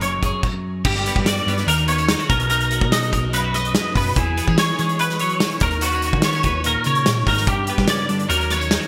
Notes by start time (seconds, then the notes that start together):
0.01 F#1 F#2 C#5, closed hi-hat
0.23 F#1 G#4, kick, closed hi-hat
0.43 kick, crash
0.85 G1 G2 G4, kick, crash
0.95 snare
1.06 B3, closed hi-hat
1.15 G2, kick
1.26 F#4 D5, snare, closed hi-hat
1.37 closed hi-hat
1.46 G2 G3 B3, closed hi-hat
1.58 snare, closed hi-hat
1.66 D#2 D#3 A#4, closed hi-hat
1.78 closed hi-hat
1.88 B3 C#5, closed hi-hat
1.98 C#4, closed hi-hat
2.09 D#4, snare, closed hi-hat
2.19 F#4, closed hi-hat
2.29 B1 B2 A#4, kick, closed hi-hat
2.40 closed hi-hat
2.50 D#4 A#4, closed hi-hat
2.61 closed hi-hat
2.71 F#4, closed hi-hat
2.81 B2, kick
2.92 F#3 D#4 D#5, snare, closed hi-hat
3.03 closed hi-hat
3.13 B1 A#4, kick, closed hi-hat
3.33 F#2 D#4 B4, closed hi-hat
3.44 F#4
3.54 B4 D#5, snare, closed hi-hat
3.65 closed hi-hat
3.75 snare, closed hi-hat
3.95 F#2 B2 B4, kick, open hi-hat
4.16 E2 E3 G#4, kick, closed hi-hat
4.37 B3, closed hi-hat
4.47 E3 C#4, kick
4.58 G#4 C#5, snare, closed hi-hat
4.68 closed hi-hat
4.79 E3 G#3 C#4, closed hi-hat
4.89 closed hi-hat
4.99 B4, closed hi-hat
5.10 snare, closed hi-hat
5.19 F#3 C#5, closed hi-hat
5.30 closed hi-hat
5.40 E3, snare, closed hi-hat
5.51 closed hi-hat
5.60 D#2 D#3 A#4, kick, closed hi-hat
5.71 closed hi-hat
5.81 B3 F#4, closed hi-hat
5.92 C#4, closed hi-hat
6.02 closed hi-hat
6.06 F#4
6.13 D#3, kick
6.22 B3 C#5, snare, closed hi-hat
6.33 C#4, closed hi-hat
6.43 D#2 B4, kick, closed hi-hat
6.64 A#2 F#4 A#4, closed hi-hat
6.84 C#3 A#4 C#5, closed hi-hat
6.95 closed hi-hat
7.06 A#2, snare, closed hi-hat
7.27 G#2 D#3 A#4, kick, open hi-hat
7.37 snare
7.47 G2 G4, kick, closed hi-hat
7.67 B3, closed hi-hat
7.78 G3, kick, snare
7.88 C#3 D5, snare, closed hi-hat
7.98 closed hi-hat
8.09 D3 G3, closed hi-hat
8.20 closed hi-hat
8.29 D#2 D#3 F#3 C#4 F#4 A#4, closed hi-hat
8.41 closed hi-hat
8.50 B3 C#5, snare, closed hi-hat
8.60 C#4, closed hi-hat
8.71 D#4, snare, closed hi-hat
8.80 F#4, closed hi-hat